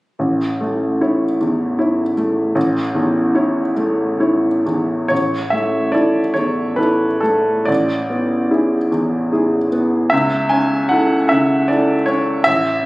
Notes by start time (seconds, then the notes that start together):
0.19 A1
0.61 A3
1.01 E4 C#5
1.41 E2
1.79 E4 C#5
2.17 A3
2.55 A1
2.95 E2
3.35 E4 C#5
3.77 A3
4.20 E4 C#5
4.66 E2
5.08 A1 C#5
5.50 A3 E5
5.92 E4 A4 D5
6.34 E2 C#5
6.76 E4 A4 B4
7.20 A3 A4
7.65 A1 D5
8.10 B3
8.51 E4 G#4
8.91 E2
9.32 E4 G#4
9.72 B3
10.10 C#2 E5
10.49 C#4 G#5
10.89 E4 A4 F#5
11.29 C#3 E5
11.68 E4 A4 D5
12.06 C#4 C#5
12.44 A1 E5